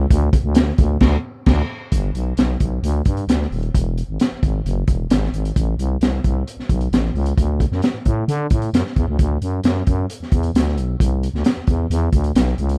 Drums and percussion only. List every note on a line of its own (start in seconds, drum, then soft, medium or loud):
0.11 kick loud
0.11 closed hi-hat loud
0.33 kick loud
0.33 closed hi-hat medium
0.55 snare loud
0.55 closed hi-hat medium
0.78 kick loud
0.78 closed hi-hat medium
1.00 kick loud
1.00 snare loud
1.00 crash medium
1.46 kick loud
1.46 snare loud
1.46 crash medium
1.92 kick medium
1.92 closed hi-hat loud
2.15 closed hi-hat medium
2.37 snare loud
2.37 closed hi-hat medium
2.60 kick medium
2.60 closed hi-hat medium
2.84 closed hi-hat medium
3.05 kick medium
3.05 closed hi-hat medium
3.17 closed hi-hat soft
3.29 snare loud
3.29 closed hi-hat loud
3.42 snare soft
3.52 open hi-hat soft
3.63 closed hi-hat soft
3.75 kick loud
3.75 closed hi-hat medium
3.98 closed hi-hat medium
4.20 snare loud
4.20 closed hi-hat medium
4.43 kick medium
4.43 closed hi-hat medium
4.66 closed hi-hat medium
4.88 kick medium
4.88 closed hi-hat medium
5.10 snare loud
5.10 closed hi-hat loud
5.24 snare soft
5.34 closed hi-hat medium
5.45 closed hi-hat medium
5.56 kick medium
5.56 closed hi-hat loud
5.79 closed hi-hat medium
6.01 snare loud
6.01 closed hi-hat medium
6.24 kick medium
6.24 closed hi-hat medium
6.48 closed hi-hat medium
6.60 snare soft
6.69 kick medium
6.69 closed hi-hat medium
6.81 closed hi-hat soft
6.93 snare loud
6.93 closed hi-hat medium
7.05 snare soft
7.15 open hi-hat soft
7.26 closed hi-hat medium
7.38 kick loud
7.38 closed hi-hat loud
7.60 kick loud
7.60 closed hi-hat medium
7.72 snare soft
7.82 snare loud
7.82 closed hi-hat medium
8.05 kick medium
8.05 closed hi-hat medium
8.29 closed hi-hat medium
8.50 kick medium
8.50 closed hi-hat medium
8.62 closed hi-hat soft
8.74 snare loud
8.74 closed hi-hat loud
8.87 snare soft
8.96 kick medium
8.96 closed hi-hat soft
9.19 kick loud
9.19 closed hi-hat medium
9.42 closed hi-hat medium
9.64 snare loud
9.64 closed hi-hat medium
9.87 kick medium
9.87 closed hi-hat medium
10.10 closed hi-hat medium
10.23 snare soft
10.32 kick medium
10.32 closed hi-hat medium
10.43 closed hi-hat soft
10.55 snare loud
10.55 closed hi-hat medium
10.68 snare soft
10.78 closed hi-hat medium
11.00 kick loud
11.00 closed hi-hat medium
11.23 closed hi-hat medium
11.35 snare soft
11.44 snare loud
11.44 closed hi-hat medium
11.67 kick medium
11.67 closed hi-hat medium
11.91 closed hi-hat medium
12.13 kick medium
12.13 closed hi-hat medium
12.24 closed hi-hat soft
12.36 snare loud
12.36 closed hi-hat loud
12.48 snare soft
12.58 closed hi-hat medium
12.69 closed hi-hat medium